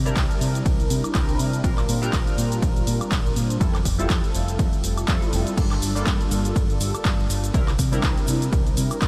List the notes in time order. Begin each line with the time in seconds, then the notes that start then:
Already playing: C3
0.05 G3 C4 D4 E4 A#4, closed hi-hat, cabasa
0.16 C2, kick, clap, closed hi-hat, ride, cabasa
0.31 closed hi-hat, cabasa
0.41 C3, open hi-hat, cabasa
0.55 closed hi-hat, cabasa
0.66 C2, kick, closed hi-hat, ride, cabasa
0.80 closed hi-hat, cabasa
0.90 C3, open hi-hat, cabasa
1.04 closed hi-hat, cabasa, high woodblock
1.14 C2 G3 C4 D4 E4 A#4, kick, clap, closed hi-hat, ride, cabasa
1.29 closed hi-hat, cabasa
1.39 C3, open hi-hat, cabasa
1.53 closed hi-hat, cabasa
1.64 A#1 G3 C4 D4 F4 A#4, kick, closed hi-hat, ride, cabasa
1.78 clap, closed hi-hat, cabasa, high woodblock
1.89 A#2, open hi-hat, cabasa
2.02 G3 C4 D4 F4 A#4, closed hi-hat, cabasa
2.13 A#1, kick, clap, closed hi-hat, ride, cabasa
2.27 closed hi-hat, cabasa
2.38 A#2, open hi-hat, cabasa
2.52 closed hi-hat, cabasa
2.62 A#1, kick, closed hi-hat, ride, cabasa
2.76 closed hi-hat, cabasa
2.87 A#2, open hi-hat, cabasa
3.01 muted fingered electric bass stroke, closed hi-hat, cabasa, high woodblock
3.12 A#1, kick, clap, closed hi-hat, ride, cabasa
3.26 cabasa
3.36 A#2, open hi-hat, cabasa
3.50 closed hi-hat, cabasa
3.60 F2 G3 C4 E4 F4 A4, kick, closed hi-hat, ride, cabasa
3.75 clap, closed hi-hat, cabasa, high woodblock
3.85 F1, kick, open hi-hat, cabasa
3.98 G3 C4 E4 F4 A4, closed hi-hat, cabasa
4.10 F2, kick, clap, closed hi-hat, ride, cabasa
4.24 closed hi-hat, cabasa
4.34 F1, open hi-hat, cabasa
4.48 closed hi-hat, cabasa
4.59 F2, kick, closed hi-hat, ride, cabasa
4.73 muted fingered electric bass stroke, closed hi-hat, cabasa
4.84 F1, open hi-hat, cabasa
4.98 closed hi-hat, cabasa, high woodblock
5.08 F2 G3 C4 E4 F4 A4, kick, clap, closed hi-hat, ride, cabasa
5.22 closed hi-hat, cabasa
5.33 F1, open hi-hat, cabasa
5.47 closed hi-hat, cabasa
5.57 G2 G3 A#3 D4 F4 A4, kick, closed hi-hat, crash, ride, cabasa, shaker
5.71 clap, closed hi-hat, cabasa, high woodblock
5.82 G1, open hi-hat, cabasa, shaker
5.95 G3 A#3 D4 F4 A4, closed hi-hat, cabasa, shaker
6.07 G2, kick, clap, closed hi-hat, ride, cabasa, shaker
6.21 closed hi-hat, cabasa
6.31 G1, open hi-hat, cabasa, shaker
6.45 closed hi-hat, cabasa, shaker
6.55 G2, kick, closed hi-hat, ride, cabasa, shaker
6.70 closed hi-hat, cabasa
6.80 G1, open hi-hat, cabasa, shaker
6.94 closed hi-hat, cabasa, high woodblock, shaker
7.05 G2, kick, clap, closed hi-hat, ride, cabasa, shaker
7.20 cabasa
7.30 G1, open hi-hat, cabasa, shaker
7.44 closed hi-hat, cabasa, shaker
7.54 C2 G3 C4 D4 E4 A#4, kick, closed hi-hat, ride, cabasa, shaker
7.68 clap, closed hi-hat, cabasa, high woodblock
7.79 C3, kick, open hi-hat, cabasa, shaker
7.92 G3 C4 D4 E4 A#4, closed hi-hat, cabasa, shaker
8.03 C2, kick, clap, closed hi-hat, ride, cabasa, shaker
8.17 closed hi-hat, cabasa
8.27 C3, open hi-hat, cabasa, shaker
8.42 closed hi-hat, cabasa, shaker
8.52 C2, kick, closed hi-hat, ride, cabasa, shaker
8.67 closed hi-hat, cabasa
8.77 C3, open hi-hat, cabasa, shaker
8.91 muted fingered electric bass stroke, closed hi-hat, cabasa, high woodblock, shaker
9.01 C2 G3 C4 D4 E4 A#4, kick, clap, closed hi-hat, ride, cabasa, shaker